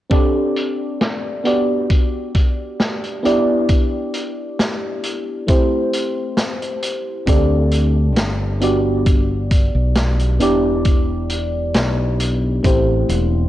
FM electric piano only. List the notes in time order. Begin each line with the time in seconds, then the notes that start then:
0.09 C4 D4 G4 A4 D5
1.44 B3 D4 F#4 G4 D5
3.23 B3 D4 E4 G4 D5
5.47 A3 C4 E4 G4 C5
7.26 C4 D4 G4 A4 D5
8.60 B3 D4 F#4 G4 D5
10.39 B3 D4 E4 G4 D5
12.63 A3 C4 E4 G4 C5